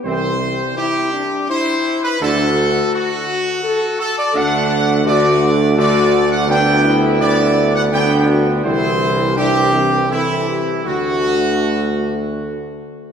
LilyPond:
<<
  \new Staff \with { instrumentName = "Trumpet section" } { \time 3/4 \key d \mixolydian \tempo 4 = 83 c''4 g'4 c''8. b'16 | a'4 fis'4. a'16 d''16 | fis''4 d''4 d''8. fis''16 | g''4 d''8. fis''16 g''8 r8 |
c''4 g'4 e'4 | fis'2~ fis'8 r8 | }
  \new Staff \with { instrumentName = "French horn section" } { \time 3/4 \key d \mixolydian c'4 e'8 d'8 e'4 | fis'2 a'4 | d'4 fis'4 fis'4 | d'8 e'4. d'8 fis'8 |
e'4 d'8 c'8 a'8 g'8 | fis'2~ fis'8 r8 | }
  \new Staff \with { instrumentName = "Trombone section" } { \clef bass \time 3/4 \key d \mixolydian <e c'>8 r2 r8 | <d a>8 r2 r8 | <d a>4 <d a>4 <d a>4 | <d b>4 <d b>4 <d b>4 |
<e c'>4 <e c'>4 <e c'>4 | <d a>2~ <d a>8 r8 | }
  \new Staff \with { instrumentName = "Tuba" } { \clef bass \time 3/4 \key d \mixolydian c,4 r2 | d,4 r2 | d,2.~ | d,2. |
c,2~ c,8 r8 | d,2~ d,8 r8 | }
>>